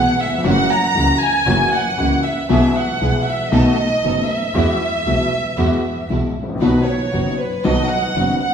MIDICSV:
0, 0, Header, 1, 5, 480
1, 0, Start_track
1, 0, Key_signature, 4, "major"
1, 0, Tempo, 513699
1, 420, Time_signature, 4, 2, 24, 8
1, 7979, End_track
2, 0, Start_track
2, 0, Title_t, "Violin section"
2, 0, Program_c, 0, 48
2, 0, Note_on_c, 0, 78, 94
2, 190, Note_off_c, 0, 78, 0
2, 191, Note_on_c, 0, 76, 80
2, 425, Note_off_c, 0, 76, 0
2, 435, Note_on_c, 0, 78, 99
2, 650, Note_off_c, 0, 78, 0
2, 669, Note_on_c, 0, 82, 95
2, 1143, Note_off_c, 0, 82, 0
2, 1146, Note_on_c, 0, 80, 98
2, 1618, Note_on_c, 0, 78, 89
2, 1620, Note_off_c, 0, 80, 0
2, 2095, Note_off_c, 0, 78, 0
2, 2100, Note_on_c, 0, 76, 80
2, 2337, Note_off_c, 0, 76, 0
2, 2349, Note_on_c, 0, 76, 87
2, 2565, Note_off_c, 0, 76, 0
2, 2584, Note_on_c, 0, 78, 81
2, 3058, Note_off_c, 0, 78, 0
2, 3058, Note_on_c, 0, 76, 83
2, 3295, Note_off_c, 0, 76, 0
2, 3296, Note_on_c, 0, 75, 96
2, 4014, Note_off_c, 0, 75, 0
2, 4021, Note_on_c, 0, 76, 83
2, 5701, Note_off_c, 0, 76, 0
2, 6170, Note_on_c, 0, 71, 80
2, 6398, Note_off_c, 0, 71, 0
2, 6415, Note_on_c, 0, 73, 73
2, 6897, Note_off_c, 0, 73, 0
2, 6898, Note_on_c, 0, 71, 77
2, 7123, Note_on_c, 0, 75, 90
2, 7139, Note_off_c, 0, 71, 0
2, 7370, Note_on_c, 0, 78, 90
2, 7371, Note_off_c, 0, 75, 0
2, 7846, Note_off_c, 0, 78, 0
2, 7857, Note_on_c, 0, 78, 82
2, 7979, Note_off_c, 0, 78, 0
2, 7979, End_track
3, 0, Start_track
3, 0, Title_t, "String section"
3, 0, Program_c, 1, 48
3, 0, Note_on_c, 1, 59, 54
3, 0, Note_on_c, 1, 64, 44
3, 0, Note_on_c, 1, 68, 53
3, 142, Note_off_c, 1, 59, 0
3, 143, Note_off_c, 1, 64, 0
3, 144, Note_off_c, 1, 68, 0
3, 418, Note_on_c, 1, 58, 79
3, 422, Note_on_c, 1, 66, 81
3, 423, Note_on_c, 1, 64, 68
3, 619, Note_off_c, 1, 58, 0
3, 621, Note_off_c, 1, 66, 0
3, 622, Note_off_c, 1, 64, 0
3, 903, Note_on_c, 1, 58, 46
3, 906, Note_on_c, 1, 66, 55
3, 907, Note_on_c, 1, 64, 45
3, 1102, Note_off_c, 1, 58, 0
3, 1103, Note_off_c, 1, 66, 0
3, 1104, Note_off_c, 1, 64, 0
3, 1371, Note_on_c, 1, 58, 67
3, 1376, Note_on_c, 1, 64, 65
3, 1376, Note_on_c, 1, 66, 79
3, 1575, Note_off_c, 1, 58, 0
3, 1577, Note_off_c, 1, 64, 0
3, 1577, Note_off_c, 1, 66, 0
3, 1855, Note_on_c, 1, 58, 53
3, 1856, Note_on_c, 1, 64, 46
3, 1860, Note_on_c, 1, 66, 55
3, 2056, Note_off_c, 1, 58, 0
3, 2056, Note_off_c, 1, 64, 0
3, 2058, Note_off_c, 1, 66, 0
3, 2326, Note_on_c, 1, 59, 73
3, 2331, Note_on_c, 1, 64, 78
3, 2334, Note_on_c, 1, 68, 80
3, 2531, Note_off_c, 1, 59, 0
3, 2534, Note_off_c, 1, 64, 0
3, 2535, Note_off_c, 1, 68, 0
3, 2813, Note_on_c, 1, 59, 47
3, 2814, Note_on_c, 1, 64, 48
3, 2815, Note_on_c, 1, 68, 60
3, 3014, Note_off_c, 1, 59, 0
3, 3015, Note_off_c, 1, 64, 0
3, 3015, Note_off_c, 1, 68, 0
3, 3292, Note_on_c, 1, 59, 75
3, 3295, Note_on_c, 1, 63, 67
3, 3296, Note_on_c, 1, 69, 89
3, 3493, Note_off_c, 1, 59, 0
3, 3494, Note_off_c, 1, 63, 0
3, 3495, Note_off_c, 1, 69, 0
3, 3771, Note_on_c, 1, 59, 50
3, 3772, Note_on_c, 1, 63, 49
3, 3776, Note_on_c, 1, 69, 58
3, 3973, Note_off_c, 1, 59, 0
3, 3973, Note_off_c, 1, 63, 0
3, 3975, Note_off_c, 1, 69, 0
3, 4255, Note_on_c, 1, 56, 76
3, 4256, Note_on_c, 1, 66, 75
3, 4257, Note_on_c, 1, 64, 69
3, 4455, Note_off_c, 1, 56, 0
3, 4455, Note_off_c, 1, 66, 0
3, 4456, Note_off_c, 1, 64, 0
3, 4731, Note_on_c, 1, 64, 42
3, 4732, Note_on_c, 1, 56, 51
3, 4734, Note_on_c, 1, 66, 50
3, 4934, Note_off_c, 1, 56, 0
3, 4934, Note_off_c, 1, 64, 0
3, 4935, Note_off_c, 1, 66, 0
3, 5203, Note_on_c, 1, 64, 61
3, 5205, Note_on_c, 1, 56, 66
3, 5205, Note_on_c, 1, 66, 73
3, 5411, Note_off_c, 1, 64, 0
3, 5412, Note_off_c, 1, 56, 0
3, 5412, Note_off_c, 1, 66, 0
3, 5696, Note_on_c, 1, 56, 45
3, 5696, Note_on_c, 1, 64, 43
3, 5700, Note_on_c, 1, 66, 55
3, 5899, Note_off_c, 1, 56, 0
3, 5899, Note_off_c, 1, 64, 0
3, 5901, Note_off_c, 1, 66, 0
3, 6177, Note_on_c, 1, 63, 70
3, 6178, Note_on_c, 1, 59, 72
3, 6180, Note_on_c, 1, 66, 76
3, 6380, Note_off_c, 1, 63, 0
3, 6381, Note_off_c, 1, 59, 0
3, 6382, Note_off_c, 1, 66, 0
3, 6656, Note_on_c, 1, 66, 51
3, 6658, Note_on_c, 1, 59, 43
3, 6658, Note_on_c, 1, 63, 43
3, 6859, Note_off_c, 1, 66, 0
3, 6860, Note_off_c, 1, 59, 0
3, 6860, Note_off_c, 1, 63, 0
3, 7139, Note_on_c, 1, 59, 72
3, 7144, Note_on_c, 1, 63, 63
3, 7144, Note_on_c, 1, 66, 77
3, 7341, Note_off_c, 1, 59, 0
3, 7343, Note_off_c, 1, 63, 0
3, 7343, Note_off_c, 1, 66, 0
3, 7616, Note_on_c, 1, 59, 46
3, 7619, Note_on_c, 1, 63, 47
3, 7620, Note_on_c, 1, 66, 51
3, 7820, Note_off_c, 1, 59, 0
3, 7821, Note_off_c, 1, 63, 0
3, 7821, Note_off_c, 1, 66, 0
3, 7979, End_track
4, 0, Start_track
4, 0, Title_t, "Grand piano"
4, 0, Program_c, 2, 0
4, 0, Note_on_c, 2, 35, 51
4, 0, Note_on_c, 2, 47, 56
4, 0, Note_on_c, 2, 52, 44
4, 0, Note_on_c, 2, 56, 42
4, 0, Note_on_c, 2, 59, 41
4, 0, Note_on_c, 2, 68, 52
4, 141, Note_off_c, 2, 35, 0
4, 141, Note_off_c, 2, 52, 0
4, 141, Note_off_c, 2, 56, 0
4, 143, Note_off_c, 2, 59, 0
4, 143, Note_off_c, 2, 68, 0
4, 144, Note_off_c, 2, 47, 0
4, 239, Note_on_c, 2, 39, 54
4, 300, Note_off_c, 2, 39, 0
4, 302, Note_on_c, 2, 40, 62
4, 354, Note_on_c, 2, 41, 70
4, 361, Note_off_c, 2, 40, 0
4, 412, Note_on_c, 2, 58, 62
4, 414, Note_on_c, 2, 52, 65
4, 414, Note_on_c, 2, 54, 80
4, 415, Note_on_c, 2, 66, 74
4, 416, Note_on_c, 2, 42, 76
4, 416, Note_on_c, 2, 61, 61
4, 417, Note_off_c, 2, 41, 0
4, 616, Note_off_c, 2, 58, 0
4, 617, Note_off_c, 2, 52, 0
4, 617, Note_off_c, 2, 54, 0
4, 618, Note_off_c, 2, 61, 0
4, 618, Note_off_c, 2, 66, 0
4, 619, Note_off_c, 2, 42, 0
4, 887, Note_on_c, 2, 37, 47
4, 888, Note_on_c, 2, 52, 45
4, 891, Note_on_c, 2, 58, 41
4, 891, Note_on_c, 2, 61, 37
4, 892, Note_on_c, 2, 49, 47
4, 896, Note_on_c, 2, 66, 47
4, 1094, Note_off_c, 2, 37, 0
4, 1094, Note_off_c, 2, 52, 0
4, 1096, Note_off_c, 2, 49, 0
4, 1096, Note_off_c, 2, 58, 0
4, 1096, Note_off_c, 2, 61, 0
4, 1098, Note_off_c, 2, 66, 0
4, 1370, Note_on_c, 2, 54, 70
4, 1371, Note_on_c, 2, 42, 77
4, 1371, Note_on_c, 2, 52, 62
4, 1372, Note_on_c, 2, 58, 59
4, 1372, Note_on_c, 2, 61, 67
4, 1376, Note_on_c, 2, 66, 69
4, 1574, Note_off_c, 2, 54, 0
4, 1575, Note_off_c, 2, 42, 0
4, 1575, Note_off_c, 2, 52, 0
4, 1575, Note_off_c, 2, 58, 0
4, 1575, Note_off_c, 2, 61, 0
4, 1577, Note_off_c, 2, 66, 0
4, 1845, Note_on_c, 2, 52, 48
4, 1847, Note_on_c, 2, 49, 59
4, 1848, Note_on_c, 2, 37, 58
4, 1850, Note_on_c, 2, 58, 45
4, 1852, Note_on_c, 2, 61, 42
4, 1854, Note_on_c, 2, 66, 56
4, 2051, Note_off_c, 2, 52, 0
4, 2052, Note_off_c, 2, 37, 0
4, 2052, Note_off_c, 2, 49, 0
4, 2053, Note_off_c, 2, 58, 0
4, 2054, Note_off_c, 2, 61, 0
4, 2055, Note_off_c, 2, 66, 0
4, 2330, Note_on_c, 2, 47, 86
4, 2332, Note_on_c, 2, 52, 69
4, 2332, Note_on_c, 2, 56, 64
4, 2333, Note_on_c, 2, 35, 87
4, 2336, Note_on_c, 2, 59, 63
4, 2339, Note_on_c, 2, 68, 82
4, 2533, Note_off_c, 2, 47, 0
4, 2534, Note_off_c, 2, 52, 0
4, 2534, Note_off_c, 2, 56, 0
4, 2535, Note_off_c, 2, 35, 0
4, 2536, Note_off_c, 2, 59, 0
4, 2538, Note_off_c, 2, 68, 0
4, 2817, Note_on_c, 2, 56, 45
4, 2819, Note_on_c, 2, 47, 57
4, 2820, Note_on_c, 2, 35, 52
4, 2820, Note_on_c, 2, 52, 49
4, 2822, Note_on_c, 2, 59, 44
4, 2823, Note_on_c, 2, 68, 46
4, 3016, Note_off_c, 2, 56, 0
4, 3017, Note_off_c, 2, 35, 0
4, 3017, Note_off_c, 2, 47, 0
4, 3017, Note_off_c, 2, 52, 0
4, 3019, Note_off_c, 2, 59, 0
4, 3019, Note_off_c, 2, 68, 0
4, 3285, Note_on_c, 2, 51, 70
4, 3286, Note_on_c, 2, 35, 75
4, 3286, Note_on_c, 2, 57, 63
4, 3289, Note_on_c, 2, 47, 84
4, 3289, Note_on_c, 2, 59, 57
4, 3289, Note_on_c, 2, 66, 77
4, 3489, Note_off_c, 2, 51, 0
4, 3490, Note_off_c, 2, 35, 0
4, 3490, Note_off_c, 2, 57, 0
4, 3491, Note_off_c, 2, 47, 0
4, 3491, Note_off_c, 2, 66, 0
4, 3492, Note_off_c, 2, 59, 0
4, 3775, Note_on_c, 2, 51, 47
4, 3777, Note_on_c, 2, 57, 44
4, 3779, Note_on_c, 2, 59, 38
4, 3780, Note_on_c, 2, 30, 59
4, 3782, Note_on_c, 2, 42, 57
4, 3783, Note_on_c, 2, 66, 50
4, 3975, Note_off_c, 2, 51, 0
4, 3976, Note_off_c, 2, 57, 0
4, 3977, Note_off_c, 2, 59, 0
4, 3978, Note_off_c, 2, 30, 0
4, 3978, Note_off_c, 2, 42, 0
4, 3979, Note_off_c, 2, 66, 0
4, 4246, Note_on_c, 2, 56, 58
4, 4247, Note_on_c, 2, 52, 86
4, 4250, Note_on_c, 2, 59, 67
4, 4251, Note_on_c, 2, 40, 80
4, 4251, Note_on_c, 2, 66, 76
4, 4450, Note_off_c, 2, 56, 0
4, 4451, Note_off_c, 2, 52, 0
4, 4452, Note_off_c, 2, 59, 0
4, 4453, Note_off_c, 2, 40, 0
4, 4453, Note_off_c, 2, 66, 0
4, 4734, Note_on_c, 2, 52, 48
4, 4735, Note_on_c, 2, 47, 50
4, 4736, Note_on_c, 2, 66, 51
4, 4737, Note_on_c, 2, 35, 50
4, 4737, Note_on_c, 2, 56, 38
4, 4739, Note_on_c, 2, 59, 43
4, 4935, Note_off_c, 2, 47, 0
4, 4935, Note_off_c, 2, 52, 0
4, 4936, Note_off_c, 2, 56, 0
4, 4936, Note_off_c, 2, 66, 0
4, 4937, Note_off_c, 2, 35, 0
4, 4937, Note_off_c, 2, 59, 0
4, 5214, Note_on_c, 2, 52, 76
4, 5214, Note_on_c, 2, 56, 57
4, 5217, Note_on_c, 2, 40, 69
4, 5218, Note_on_c, 2, 59, 58
4, 5220, Note_on_c, 2, 66, 73
4, 5416, Note_off_c, 2, 56, 0
4, 5417, Note_off_c, 2, 52, 0
4, 5418, Note_off_c, 2, 40, 0
4, 5418, Note_off_c, 2, 59, 0
4, 5420, Note_off_c, 2, 66, 0
4, 5695, Note_on_c, 2, 52, 44
4, 5697, Note_on_c, 2, 56, 43
4, 5698, Note_on_c, 2, 59, 40
4, 5700, Note_on_c, 2, 35, 54
4, 5700, Note_on_c, 2, 66, 42
4, 5703, Note_on_c, 2, 47, 47
4, 5898, Note_off_c, 2, 52, 0
4, 5899, Note_off_c, 2, 56, 0
4, 5900, Note_off_c, 2, 59, 0
4, 5901, Note_off_c, 2, 35, 0
4, 5901, Note_off_c, 2, 66, 0
4, 5902, Note_off_c, 2, 47, 0
4, 6007, Note_on_c, 2, 32, 54
4, 6063, Note_off_c, 2, 32, 0
4, 6067, Note_on_c, 2, 33, 62
4, 6121, Note_on_c, 2, 34, 68
4, 6123, Note_off_c, 2, 33, 0
4, 6180, Note_off_c, 2, 34, 0
4, 6180, Note_on_c, 2, 51, 62
4, 6181, Note_on_c, 2, 54, 61
4, 6183, Note_on_c, 2, 47, 78
4, 6185, Note_on_c, 2, 59, 59
4, 6186, Note_on_c, 2, 35, 72
4, 6186, Note_on_c, 2, 66, 69
4, 6382, Note_off_c, 2, 51, 0
4, 6382, Note_off_c, 2, 54, 0
4, 6383, Note_off_c, 2, 47, 0
4, 6384, Note_off_c, 2, 35, 0
4, 6384, Note_off_c, 2, 59, 0
4, 6384, Note_off_c, 2, 66, 0
4, 6663, Note_on_c, 2, 51, 41
4, 6664, Note_on_c, 2, 54, 39
4, 6664, Note_on_c, 2, 59, 39
4, 6665, Note_on_c, 2, 42, 52
4, 6667, Note_on_c, 2, 30, 47
4, 6669, Note_on_c, 2, 66, 49
4, 6863, Note_off_c, 2, 51, 0
4, 6863, Note_off_c, 2, 54, 0
4, 6863, Note_off_c, 2, 59, 0
4, 6864, Note_off_c, 2, 42, 0
4, 6865, Note_off_c, 2, 30, 0
4, 6866, Note_off_c, 2, 66, 0
4, 7141, Note_on_c, 2, 51, 60
4, 7141, Note_on_c, 2, 54, 60
4, 7142, Note_on_c, 2, 35, 84
4, 7144, Note_on_c, 2, 59, 56
4, 7144, Note_on_c, 2, 66, 69
4, 7146, Note_on_c, 2, 47, 81
4, 7341, Note_off_c, 2, 51, 0
4, 7342, Note_off_c, 2, 35, 0
4, 7342, Note_off_c, 2, 54, 0
4, 7343, Note_off_c, 2, 59, 0
4, 7343, Note_off_c, 2, 66, 0
4, 7344, Note_off_c, 2, 47, 0
4, 7623, Note_on_c, 2, 51, 47
4, 7626, Note_on_c, 2, 59, 45
4, 7626, Note_on_c, 2, 66, 49
4, 7627, Note_on_c, 2, 54, 42
4, 7628, Note_on_c, 2, 42, 52
4, 7629, Note_on_c, 2, 30, 55
4, 7823, Note_off_c, 2, 51, 0
4, 7824, Note_off_c, 2, 66, 0
4, 7825, Note_off_c, 2, 42, 0
4, 7825, Note_off_c, 2, 54, 0
4, 7825, Note_off_c, 2, 59, 0
4, 7826, Note_off_c, 2, 30, 0
4, 7979, End_track
5, 0, Start_track
5, 0, Title_t, "Double bass"
5, 0, Program_c, 3, 43
5, 0, Note_on_c, 3, 35, 55
5, 142, Note_off_c, 3, 35, 0
5, 418, Note_on_c, 3, 30, 86
5, 620, Note_off_c, 3, 30, 0
5, 893, Note_on_c, 3, 37, 66
5, 1096, Note_off_c, 3, 37, 0
5, 1370, Note_on_c, 3, 30, 87
5, 1574, Note_off_c, 3, 30, 0
5, 1851, Note_on_c, 3, 37, 55
5, 2054, Note_off_c, 3, 37, 0
5, 2330, Note_on_c, 3, 35, 81
5, 2533, Note_off_c, 3, 35, 0
5, 2812, Note_on_c, 3, 35, 68
5, 3013, Note_off_c, 3, 35, 0
5, 3288, Note_on_c, 3, 35, 87
5, 3491, Note_off_c, 3, 35, 0
5, 3771, Note_on_c, 3, 30, 56
5, 3973, Note_off_c, 3, 30, 0
5, 4246, Note_on_c, 3, 40, 84
5, 4450, Note_off_c, 3, 40, 0
5, 4726, Note_on_c, 3, 35, 58
5, 4931, Note_off_c, 3, 35, 0
5, 5209, Note_on_c, 3, 40, 80
5, 5414, Note_off_c, 3, 40, 0
5, 5697, Note_on_c, 3, 35, 54
5, 5899, Note_off_c, 3, 35, 0
5, 5939, Note_on_c, 3, 33, 49
5, 6172, Note_off_c, 3, 33, 0
5, 6178, Note_on_c, 3, 35, 82
5, 6381, Note_off_c, 3, 35, 0
5, 6662, Note_on_c, 3, 30, 60
5, 6863, Note_off_c, 3, 30, 0
5, 7144, Note_on_c, 3, 35, 77
5, 7343, Note_off_c, 3, 35, 0
5, 7619, Note_on_c, 3, 30, 56
5, 7821, Note_off_c, 3, 30, 0
5, 7979, End_track
0, 0, End_of_file